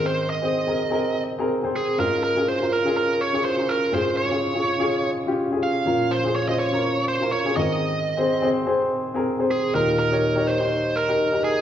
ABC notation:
X:1
M:4/4
L:1/16
Q:"Swing 16ths" 1/4=124
K:Ab
V:1 name="Lead electric guitar"
c2 e8 z4 A2 | B2 B2 c2 B2 B2 d2 c2 B2 | c2 d8 z4 f2- | f2 c2 d e d4 c2 d2 e2- |
e6 z8 A2 | B2 B4 c4 B4 A2 |]
V:2 name="Grand piano"
[CAB]2 z [CAc]2 [CAB]2 [CAB]3 z [CAB]2 [CAc]2 z | [DFA]2 z [DFA]2 [DFB]2 [DFA]3 z [DFA]2 [DFB]2 z | [DFA]2 z [DFA]2 [DFA]2 [DFA]3 z [DFG]2 [DFA]2 z | [DFB]2 z [DFA]2 [DFc]2 [DFB]3 z [DFB]2 [DFA] [CAB]2- |
[CAB]2 z [CAc]2 [CAc]2 [CAc]3 z [CAB]2 [CAc]2 z | [EGB]2 z [EGd]2 [EGd]2 [EGc]3 z [EGB]2 [EGB]2 z |]
V:3 name="Grand piano" clef=bass
[A,,E,]12- [A,,E,]2 z2 | [A,,A,]16 | [A,,A,]16 | [B,,F,]12- [B,,F,]2 [A,,E,]2- |
[A,,E,]12- [A,,E,]2 z2 | [E,,B,,]16 |]